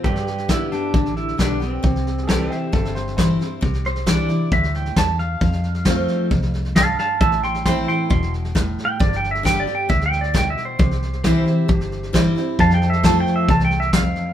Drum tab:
HH |----p-------p---|----p-------p---|----p-------p---|----p-------p---|
SD |ooooo-o-ooooo-o-|ooooo-o-ooooo-o-|ooooo-o-ooooo-o-|ooooo-o-ooooo-o-|
BD |o---o---o---o---|o---o---o---o---|o---o---o---o---|o---o---o---o---|

HH |----p-------p---|----p-------p---|----p-------p---|----p-------p---|
SD |ooooo-o-ooooo-o-|ooooo-o-ooooo-o-|ooooo-o-ooooo-o-|ooooo-o-ooooo-o-|
BD |o---o---o---o---|o---o---o---o---|o---o---o---o---|o---o---o---o---|